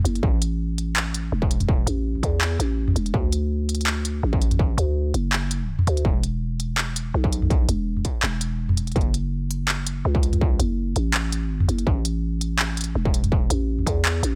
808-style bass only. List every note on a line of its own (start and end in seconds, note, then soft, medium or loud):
0.05 0.22 F#1 medium
0.23 1.31 A1 medium
1.32 1.86 E1 medium
1.87 2.22 A1 loud
2.23 2.58 E2 medium
2.60 2.95 A1 medium
2.96 3.13 E1 medium
3.14 4.22 D2 medium
4.23 4.77 A1 medium
4.78 5.13 D2 loud
5.14 5.86 F#1 loud
5.87 6.04 D2 medium
6.05 7.13 E1 loud
7.14 7.67 B1 loud
7.69 8.04 E1 loud
8.23 8.95 E1 medium
8.96 10.04 F#1 loud
10.05 10.58 C#2 medium
10.59 10.95 F#1 loud
10.96 11.46 A1 loud
11.46 11.67 G#1 loud
11.69 11.85 F#1 medium
11.87 12.95 A1 loud
12.95 13.49 E1 loud
13.50 13.85 A1 loud
13.87 14.22 E2 medium
14.23 14.35 A1 medium